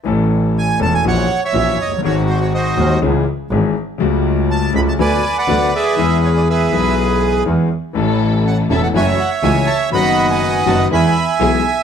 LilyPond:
<<
  \new Staff \with { instrumentName = "Bandoneon" } { \time 4/4 \key a \major \tempo 4 = 122 << { r4 gis''8 a''16 gis''16 fis''8. e''8. dis''8 | cis''8 bis'16 cis''16 dis''4 r2 | r4 a''8 b''16 a''16 gis''8. fis''8. e''8~ | e''8 cis''16 d''16 e''4 r2 |
r4 fis''8 e''16 fis''16 gis''8 fis''8 gis''8 a''8 | b''8. gis''8. a''8 b''4 r4 | } \\ { r2 cis''8. cis''4~ cis''16 | fis'4 <fis' bis'>4 r2 | r2 <b' d''>8. <b' d''>8. <gis' b'>8~ | <gis' b'>4 <gis' b'>2 r4 |
r2 <cis'' e''>2 | <dis'' fis''>8. <b' dis''>4~ <b' dis''>16 <e'' gis''>2 | } >> }
  \new Staff \with { instrumentName = "String section" } { \time 4/4 \key a \major r1 | r1 | r1 | r1 |
<cis' e' a'>4. <cis' e' a'>8 <a e' fis'>8 r8 <a e' fis'>8 r8 | <b dis' fis'>4. <b dis' fis'>8 <b e' gis'>8 r8 <b e' gis'>8 r8 | }
  \new Staff \with { instrumentName = "Grand piano" } { \clef bass \time 4/4 \key a \major <a,, a, e a cis' a'>4. <e,, e, e a cis' a'>8 <ais,, ais, e ais cis' fis'>8 r8 <ais,, ais, e ais cis' fis'>8 r32 f,,32 fis,,32 g,,32 | <gis,, gis, dis gis bis fis'>4. <dis,, dis, dis gis bis fis'>8 <cis, cis e gis cis' gis'>8 r8 <gis,, gis, e gis cis' gis'>8 r8 | <cis, cis fis a fis'>4. <cis, cis fis a fis'>8 <d, d fis b fis'>8 r8 <d, d fis b fis'>8 r8 | <e, e gis b gis'>4. <b,, b, e gis b gis'>4. <e, e gis b gis'>8 r8 |
<a,, a, e a cis' a'>4. <e,, e, e a cis' a'>8 <fis, e fis a cis' fis'>8 r8 <cis, cis e a cis' fis'>8 r8 | <fis, dis fis b fis'>4. <fis, dis fis b fis'>8 <e, e gis b gis'>8 r8 <b,, b, e gis b gis'>8 r8 | }
  \new Staff \with { instrumentName = "Double bass" } { \clef bass \time 4/4 \key a \major a,,4. e,,8 ais,,8 r8 ais,,8 fis,,8 | gis,,4. dis,8 cis,8 r8 gis,,8 r8 | cis,4. cis,8 d,8 r8 d,8 r8 | e,4. b,,4. e,8 r8 |
a,,4. e,,8 fis,,8 r8 cis,8 r8 | fis,,4. fis,,8 e,8 r8 b,,8 r8 | }
>>